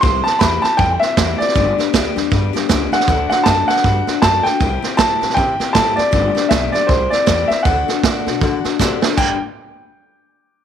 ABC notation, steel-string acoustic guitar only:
X:1
M:4/4
L:1/8
Q:"Swing" 1/4=158
K:G
V:1 name="Steel-string acoustic guitar"
[C,G,CEG] [CEG] [C,G,CEG] [CEG] [G,CEG] [CEG] [C,G,CEG] [CEG] | [G,,D,G,B,DG] [G,B,DG] [G,,D,G,B,DG] [G,B,DG] [G,B,DG] [G,B,DG] [G,,D,G,B,DG] [G,B,DG] | [D,A,DFA] [DFA] [D,A,DFA] [DFA] [A,DFA] [DFA] [D,A,DFA] [DFA] | [C,G,CEG] [CEG] [C,G,CEG] [CEG] [G,CEG] [CEG] [C,G,CEG] [CEG] |
[G,,D,G,B,DG] [G,B,DG] [G,,D,G,B,DG] [G,B,DG] [G,CEG] [CEG] [C,G,CEG] [CEG] | [D,A,DFA] [DFA] [D,A,DFA] [DFA] [A,DFA] [DFA] [D,A,DFA] [DFA] | [G,,D,G,DGB] z6 z |]